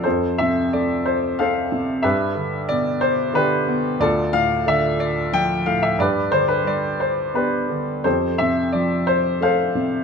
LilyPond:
<<
  \new Staff \with { instrumentName = "Grand piano" } { \time 3/4 \key f \lydian \tempo 4 = 90 << { c''8 e''8 d''8 c''8 f''4 | e''4 d''8 c''8 b'4 | d''8 f''8 e''8 d''8 g''8 f''16 e''16 | d''8 c''16 b'16 d''8 c''8 b'4 |
c''8 e''8 d''8 c''8 f''4 | } \\ { <f' a'>4. r8 <a' c''>4 | <g' b'>4. r8 <d' g'>4 | <f' a'>4. r4. | <g' b'>4. r8 <d' g'>4 |
<g' a'>4. r8 <a' c''>4 | } >> }
  \new Staff \with { instrumentName = "Grand piano" } { \clef bass \time 3/4 \key f \lydian f,8 c8 a4 c'8 c8 | g,8 d8 b,4 d8 b8 | d,8 a,8 d4 f8 a,8 | g,8 d8 g4 b8 d8 |
f,8 c8 f4 a8 c8 | }
>>